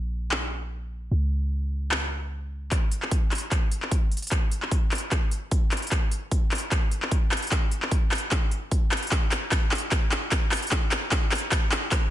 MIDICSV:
0, 0, Header, 1, 3, 480
1, 0, Start_track
1, 0, Tempo, 400000
1, 1339, Time_signature, 4, 2, 24, 8
1, 14524, End_track
2, 0, Start_track
2, 0, Title_t, "808-style bass"
2, 0, Program_c, 0, 38
2, 0, Note_on_c, 0, 34, 86
2, 1317, Note_off_c, 0, 34, 0
2, 1339, Note_on_c, 0, 37, 85
2, 3237, Note_off_c, 0, 37, 0
2, 14524, End_track
3, 0, Start_track
3, 0, Title_t, "Drums"
3, 377, Note_on_c, 9, 39, 87
3, 497, Note_off_c, 9, 39, 0
3, 2297, Note_on_c, 9, 39, 95
3, 2417, Note_off_c, 9, 39, 0
3, 3257, Note_on_c, 9, 39, 48
3, 3257, Note_on_c, 9, 42, 80
3, 3258, Note_on_c, 9, 36, 90
3, 3377, Note_off_c, 9, 39, 0
3, 3377, Note_off_c, 9, 42, 0
3, 3378, Note_off_c, 9, 36, 0
3, 3498, Note_on_c, 9, 42, 68
3, 3618, Note_off_c, 9, 42, 0
3, 3629, Note_on_c, 9, 39, 43
3, 3737, Note_on_c, 9, 42, 82
3, 3738, Note_on_c, 9, 36, 98
3, 3749, Note_off_c, 9, 39, 0
3, 3857, Note_off_c, 9, 42, 0
3, 3858, Note_off_c, 9, 36, 0
3, 3978, Note_on_c, 9, 39, 48
3, 3978, Note_on_c, 9, 42, 50
3, 4022, Note_off_c, 9, 42, 0
3, 4022, Note_on_c, 9, 42, 62
3, 4058, Note_off_c, 9, 42, 0
3, 4058, Note_on_c, 9, 42, 80
3, 4098, Note_off_c, 9, 39, 0
3, 4178, Note_off_c, 9, 42, 0
3, 4218, Note_on_c, 9, 36, 93
3, 4218, Note_on_c, 9, 39, 47
3, 4218, Note_on_c, 9, 42, 77
3, 4338, Note_off_c, 9, 36, 0
3, 4338, Note_off_c, 9, 39, 0
3, 4338, Note_off_c, 9, 42, 0
3, 4458, Note_on_c, 9, 42, 69
3, 4578, Note_off_c, 9, 42, 0
3, 4589, Note_on_c, 9, 39, 45
3, 4698, Note_on_c, 9, 36, 97
3, 4698, Note_on_c, 9, 42, 79
3, 4709, Note_off_c, 9, 39, 0
3, 4818, Note_off_c, 9, 36, 0
3, 4818, Note_off_c, 9, 42, 0
3, 4938, Note_on_c, 9, 42, 51
3, 5004, Note_off_c, 9, 42, 0
3, 5004, Note_on_c, 9, 42, 68
3, 5069, Note_off_c, 9, 42, 0
3, 5069, Note_on_c, 9, 42, 52
3, 5123, Note_off_c, 9, 42, 0
3, 5123, Note_on_c, 9, 42, 70
3, 5178, Note_off_c, 9, 42, 0
3, 5178, Note_on_c, 9, 36, 90
3, 5178, Note_on_c, 9, 39, 53
3, 5178, Note_on_c, 9, 42, 81
3, 5298, Note_off_c, 9, 36, 0
3, 5298, Note_off_c, 9, 39, 0
3, 5298, Note_off_c, 9, 42, 0
3, 5418, Note_on_c, 9, 42, 67
3, 5538, Note_off_c, 9, 42, 0
3, 5549, Note_on_c, 9, 39, 45
3, 5657, Note_on_c, 9, 42, 82
3, 5658, Note_on_c, 9, 36, 90
3, 5669, Note_off_c, 9, 39, 0
3, 5777, Note_off_c, 9, 42, 0
3, 5778, Note_off_c, 9, 36, 0
3, 5898, Note_on_c, 9, 39, 57
3, 5898, Note_on_c, 9, 42, 48
3, 5941, Note_off_c, 9, 42, 0
3, 5941, Note_on_c, 9, 42, 64
3, 5977, Note_off_c, 9, 42, 0
3, 5977, Note_on_c, 9, 42, 76
3, 6018, Note_off_c, 9, 39, 0
3, 6097, Note_off_c, 9, 42, 0
3, 6137, Note_on_c, 9, 39, 54
3, 6137, Note_on_c, 9, 42, 74
3, 6138, Note_on_c, 9, 36, 93
3, 6257, Note_off_c, 9, 39, 0
3, 6257, Note_off_c, 9, 42, 0
3, 6258, Note_off_c, 9, 36, 0
3, 6377, Note_on_c, 9, 42, 67
3, 6497, Note_off_c, 9, 42, 0
3, 6617, Note_on_c, 9, 42, 80
3, 6619, Note_on_c, 9, 36, 101
3, 6737, Note_off_c, 9, 42, 0
3, 6739, Note_off_c, 9, 36, 0
3, 6858, Note_on_c, 9, 39, 59
3, 6858, Note_on_c, 9, 42, 51
3, 6923, Note_off_c, 9, 42, 0
3, 6923, Note_on_c, 9, 42, 62
3, 6978, Note_off_c, 9, 39, 0
3, 6988, Note_off_c, 9, 42, 0
3, 6988, Note_on_c, 9, 42, 53
3, 7042, Note_off_c, 9, 42, 0
3, 7042, Note_on_c, 9, 42, 68
3, 7098, Note_off_c, 9, 42, 0
3, 7098, Note_on_c, 9, 36, 92
3, 7098, Note_on_c, 9, 39, 59
3, 7098, Note_on_c, 9, 42, 73
3, 7218, Note_off_c, 9, 36, 0
3, 7218, Note_off_c, 9, 39, 0
3, 7218, Note_off_c, 9, 42, 0
3, 7338, Note_on_c, 9, 42, 66
3, 7458, Note_off_c, 9, 42, 0
3, 7578, Note_on_c, 9, 36, 93
3, 7578, Note_on_c, 9, 42, 78
3, 7698, Note_off_c, 9, 36, 0
3, 7698, Note_off_c, 9, 42, 0
3, 7818, Note_on_c, 9, 39, 62
3, 7818, Note_on_c, 9, 42, 44
3, 7861, Note_off_c, 9, 42, 0
3, 7861, Note_on_c, 9, 42, 65
3, 7898, Note_off_c, 9, 42, 0
3, 7898, Note_on_c, 9, 42, 78
3, 7938, Note_off_c, 9, 39, 0
3, 8018, Note_off_c, 9, 42, 0
3, 8058, Note_on_c, 9, 36, 96
3, 8058, Note_on_c, 9, 39, 61
3, 8058, Note_on_c, 9, 42, 75
3, 8178, Note_off_c, 9, 36, 0
3, 8178, Note_off_c, 9, 39, 0
3, 8178, Note_off_c, 9, 42, 0
3, 8298, Note_on_c, 9, 42, 64
3, 8418, Note_off_c, 9, 42, 0
3, 8429, Note_on_c, 9, 39, 58
3, 8538, Note_on_c, 9, 42, 78
3, 8539, Note_on_c, 9, 36, 96
3, 8549, Note_off_c, 9, 39, 0
3, 8658, Note_off_c, 9, 42, 0
3, 8659, Note_off_c, 9, 36, 0
3, 8778, Note_on_c, 9, 39, 69
3, 8778, Note_on_c, 9, 42, 47
3, 8843, Note_off_c, 9, 42, 0
3, 8843, Note_on_c, 9, 42, 64
3, 8898, Note_off_c, 9, 39, 0
3, 8909, Note_off_c, 9, 42, 0
3, 8909, Note_on_c, 9, 42, 50
3, 8963, Note_off_c, 9, 42, 0
3, 8963, Note_on_c, 9, 42, 66
3, 9018, Note_off_c, 9, 42, 0
3, 9018, Note_on_c, 9, 36, 91
3, 9018, Note_on_c, 9, 39, 68
3, 9018, Note_on_c, 9, 42, 76
3, 9138, Note_off_c, 9, 36, 0
3, 9138, Note_off_c, 9, 39, 0
3, 9138, Note_off_c, 9, 42, 0
3, 9258, Note_on_c, 9, 42, 64
3, 9378, Note_off_c, 9, 42, 0
3, 9389, Note_on_c, 9, 39, 58
3, 9498, Note_on_c, 9, 36, 95
3, 9498, Note_on_c, 9, 42, 73
3, 9509, Note_off_c, 9, 39, 0
3, 9618, Note_off_c, 9, 36, 0
3, 9618, Note_off_c, 9, 42, 0
3, 9737, Note_on_c, 9, 39, 65
3, 9737, Note_on_c, 9, 42, 44
3, 9781, Note_off_c, 9, 42, 0
3, 9781, Note_on_c, 9, 42, 58
3, 9817, Note_off_c, 9, 42, 0
3, 9817, Note_on_c, 9, 42, 74
3, 9857, Note_off_c, 9, 39, 0
3, 9937, Note_off_c, 9, 42, 0
3, 9977, Note_on_c, 9, 39, 70
3, 9977, Note_on_c, 9, 42, 76
3, 9978, Note_on_c, 9, 36, 102
3, 10097, Note_off_c, 9, 39, 0
3, 10097, Note_off_c, 9, 42, 0
3, 10098, Note_off_c, 9, 36, 0
3, 10217, Note_on_c, 9, 42, 66
3, 10337, Note_off_c, 9, 42, 0
3, 10458, Note_on_c, 9, 42, 75
3, 10459, Note_on_c, 9, 36, 100
3, 10578, Note_off_c, 9, 42, 0
3, 10579, Note_off_c, 9, 36, 0
3, 10698, Note_on_c, 9, 39, 75
3, 10698, Note_on_c, 9, 42, 48
3, 10764, Note_off_c, 9, 42, 0
3, 10764, Note_on_c, 9, 42, 58
3, 10818, Note_off_c, 9, 39, 0
3, 10829, Note_off_c, 9, 42, 0
3, 10829, Note_on_c, 9, 42, 48
3, 10884, Note_off_c, 9, 42, 0
3, 10884, Note_on_c, 9, 42, 63
3, 10938, Note_off_c, 9, 42, 0
3, 10938, Note_on_c, 9, 39, 71
3, 10938, Note_on_c, 9, 42, 73
3, 10939, Note_on_c, 9, 36, 98
3, 11058, Note_off_c, 9, 39, 0
3, 11058, Note_off_c, 9, 42, 0
3, 11059, Note_off_c, 9, 36, 0
3, 11178, Note_on_c, 9, 39, 75
3, 11178, Note_on_c, 9, 42, 62
3, 11298, Note_off_c, 9, 39, 0
3, 11298, Note_off_c, 9, 42, 0
3, 11418, Note_on_c, 9, 39, 75
3, 11418, Note_on_c, 9, 42, 74
3, 11419, Note_on_c, 9, 36, 97
3, 11538, Note_off_c, 9, 39, 0
3, 11538, Note_off_c, 9, 42, 0
3, 11539, Note_off_c, 9, 36, 0
3, 11658, Note_on_c, 9, 39, 81
3, 11658, Note_on_c, 9, 42, 45
3, 11702, Note_off_c, 9, 42, 0
3, 11702, Note_on_c, 9, 42, 62
3, 11739, Note_off_c, 9, 42, 0
3, 11739, Note_on_c, 9, 42, 77
3, 11778, Note_off_c, 9, 39, 0
3, 11859, Note_off_c, 9, 42, 0
3, 11898, Note_on_c, 9, 36, 97
3, 11898, Note_on_c, 9, 39, 76
3, 11898, Note_on_c, 9, 42, 77
3, 12018, Note_off_c, 9, 36, 0
3, 12018, Note_off_c, 9, 39, 0
3, 12018, Note_off_c, 9, 42, 0
3, 12139, Note_on_c, 9, 39, 75
3, 12139, Note_on_c, 9, 42, 66
3, 12259, Note_off_c, 9, 39, 0
3, 12259, Note_off_c, 9, 42, 0
3, 12379, Note_on_c, 9, 36, 96
3, 12379, Note_on_c, 9, 39, 84
3, 12379, Note_on_c, 9, 42, 81
3, 12499, Note_off_c, 9, 36, 0
3, 12499, Note_off_c, 9, 39, 0
3, 12499, Note_off_c, 9, 42, 0
3, 12618, Note_on_c, 9, 39, 82
3, 12618, Note_on_c, 9, 46, 94
3, 12684, Note_on_c, 9, 42, 62
3, 12738, Note_off_c, 9, 39, 0
3, 12738, Note_off_c, 9, 46, 0
3, 12749, Note_off_c, 9, 42, 0
3, 12749, Note_on_c, 9, 42, 48
3, 12803, Note_off_c, 9, 42, 0
3, 12803, Note_on_c, 9, 42, 65
3, 12857, Note_off_c, 9, 42, 0
3, 12857, Note_on_c, 9, 39, 82
3, 12857, Note_on_c, 9, 42, 81
3, 12859, Note_on_c, 9, 36, 90
3, 12977, Note_off_c, 9, 39, 0
3, 12977, Note_off_c, 9, 42, 0
3, 12979, Note_off_c, 9, 36, 0
3, 13098, Note_on_c, 9, 39, 90
3, 13098, Note_on_c, 9, 42, 66
3, 13218, Note_off_c, 9, 39, 0
3, 13218, Note_off_c, 9, 42, 0
3, 13338, Note_on_c, 9, 39, 87
3, 13338, Note_on_c, 9, 42, 82
3, 13339, Note_on_c, 9, 36, 98
3, 13458, Note_off_c, 9, 39, 0
3, 13458, Note_off_c, 9, 42, 0
3, 13459, Note_off_c, 9, 36, 0
3, 13579, Note_on_c, 9, 39, 88
3, 13579, Note_on_c, 9, 42, 49
3, 13622, Note_off_c, 9, 42, 0
3, 13622, Note_on_c, 9, 42, 62
3, 13659, Note_off_c, 9, 42, 0
3, 13659, Note_on_c, 9, 42, 75
3, 13699, Note_off_c, 9, 39, 0
3, 13779, Note_off_c, 9, 42, 0
3, 13819, Note_on_c, 9, 36, 99
3, 13819, Note_on_c, 9, 39, 85
3, 13819, Note_on_c, 9, 42, 79
3, 13939, Note_off_c, 9, 36, 0
3, 13939, Note_off_c, 9, 39, 0
3, 13939, Note_off_c, 9, 42, 0
3, 14059, Note_on_c, 9, 39, 91
3, 14059, Note_on_c, 9, 42, 68
3, 14179, Note_off_c, 9, 39, 0
3, 14179, Note_off_c, 9, 42, 0
3, 14299, Note_on_c, 9, 36, 100
3, 14299, Note_on_c, 9, 39, 96
3, 14299, Note_on_c, 9, 42, 79
3, 14419, Note_off_c, 9, 36, 0
3, 14419, Note_off_c, 9, 39, 0
3, 14419, Note_off_c, 9, 42, 0
3, 14524, End_track
0, 0, End_of_file